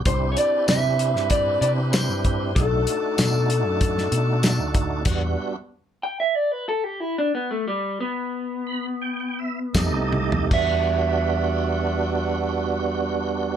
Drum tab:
CC |----------------|----------------|x---------------|----------------|
HH |x-x-x-x-x-x-x-x-|x-x-x-x-x-x-x-x-|x---------------|------------x---|
TB |----x-------x---|----x-------x---|----------------|------------x---|
SD |----o--o----o---|----o----o--o---|----------------|------------o---|
T1 |----------------|----------------|----------------|--------------o-|
FT |----------------|----------------|----------------|---------------o|
BD |o-------o-----o-|o-------o-----o-|o---------------|------------o---|

CC |x---------------|
HH |----------------|
TB |----------------|
SD |----------------|
T1 |----------------|
FT |----------------|
BD |o---------------|